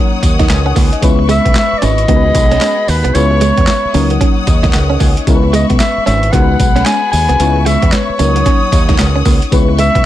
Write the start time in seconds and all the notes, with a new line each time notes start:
Already playing: F#3 A#3 C#4 D#4 A#4 C#5 F#5 D#6
0.23 D#2, muted clean electric guitar stroke, kick, closed hi-hat, tambourine
0.39 D#4, kick, snare, closed hi-hat
0.49 C#2 G#5, muted clean electric guitar stroke, snare, clap, closed hi-hat, tambourine
0.66 C#4 F#5
0.76 C#2 A#3, kick, open hi-hat, tambourine
0.92 D#5, closed hi-hat
1.01 C#2 G#3 B3 C#4 E4 B4 E5 C#6, kick, closed hi-hat, tambourine
1.19 muted clean electric guitar stroke
1.29 G#3 E5, closed hi-hat, tambourine
1.45 B1 B3, kick, closed hi-hat
1.55 E5, snare, clap, closed hi-hat, tambourine
1.73 muted fingered electric bass stroke
1.78 D5
1.82 G#1 C#4 D#5, snare, closed hi-hat, tambourine
1.98 closed hi-hat
2.08 C#2 G#3 B3 D#4 F#4 G#4 A#4 F#5 B5, kick, closed hi-hat
2.16 B4
2.35 B1, muted clean electric guitar stroke, kick, closed hi-hat, tambourine
2.51 C#4, snare, closed hi-hat
2.61 C#4, snare, clap, closed hi-hat, tambourine
2.88 D#2 B4, muted clean electric guitar stroke, open hi-hat, tambourine
3.04 C2 B3, closed hi-hat
3.14 C#2 G#3 B3 C#4 E4 B4 C#5 E5 C#6, closed hi-hat, tambourine
3.31 muted clean electric guitar stroke
3.41 G#3, closed hi-hat, tambourine
3.57 E2 B3, kick, closed hi-hat
3.67 muted clean electric guitar stroke, snare, clap, closed hi-hat, tambourine
3.85 muted fingered electric bass stroke
3.94 C#2 F#3 A#3 C#4 D#4 A#4 C#5 F#5 D#6, open hi-hat, tambourine
4.10 A#3, closed hi-hat
4.21 C#4, kick, closed hi-hat
4.47 D#2 D#5, muted clean electric guitar stroke, kick, closed hi-hat, tambourine
4.63 D#4, kick, snare, closed hi-hat
4.73 C#2 F#5, muted clean electric guitar stroke, snare, clap, closed hi-hat, tambourine
4.90 C#4
5.00 C#2 A#3 G#5, kick, open hi-hat, tambourine
5.17 closed hi-hat
5.27 C#2 G#3 B3 C#4 E4 A#4 B4 E5 C#6, kick, closed hi-hat, tambourine
5.35 B4
5.43 muted clean electric guitar stroke
5.53 G#3 D#5, closed hi-hat, tambourine
5.70 B1 B3, kick, closed hi-hat
5.79 E5, snare, clap, closed hi-hat, tambourine
5.97 muted fingered electric bass stroke
6.06 G#1 C#4 E5, snare, closed hi-hat, tambourine
6.23 closed hi-hat
6.32 C#2 G#3 B3 D#4 F#4 G#4 A#4 F#5 B5, kick, clap, closed hi-hat
6.41 B4
6.60 B1, muted clean electric guitar stroke, kick, closed hi-hat, tambourine
6.76 C#4, snare, closed hi-hat
6.85 C#4 G#5, snare, clap, closed hi-hat, tambourine
7.11 D#2 G#5, muted clean electric guitar stroke, open hi-hat, tambourine
7.29 C2 B3, closed hi-hat
7.40 C#2 G#3 B3 C#4 E4 B4 E5 C#6, closed hi-hat, tambourine
7.56 muted clean electric guitar stroke
7.66 G#3 E5, closed hi-hat, tambourine
7.82 E2 B3, kick, closed hi-hat
7.92 C#5, muted clean electric guitar stroke, snare, clap, closed hi-hat, tambourine
8.09 muted fingered electric bass stroke
8.19 C#2 F#3 A#3 C#4 D#4 A#4 C#5 F#5 D#6, closed hi-hat, tambourine
8.36 A#3, closed hi-hat
8.46 C#4, kick, clap, closed hi-hat
8.72 D#2, muted clean electric guitar stroke, kick, closed hi-hat, tambourine
8.89 D#4, kick, snare, closed hi-hat
8.98 C#2, muted clean electric guitar stroke, snare, clap, closed hi-hat, tambourine
9.16 C#4
9.25 C#2 A#3, kick, open hi-hat, tambourine
9.42 closed hi-hat
9.51 C#2 G#3 B3 C#4 E4 B4 E5 C#6, kick, closed hi-hat, tambourine
9.69 muted clean electric guitar stroke
9.79 G#3 E5, closed hi-hat, tambourine
9.95 B1 B3, kick, closed hi-hat